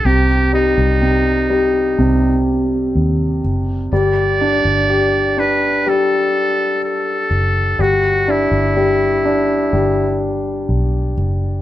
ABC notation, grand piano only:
X:1
M:4/4
L:1/8
Q:1/4=62
K:G
V:1 name="Grand piano" clef=bass
C, G, C, G, C,4 | G, D G D G,4 | G, D G, D G,4 |]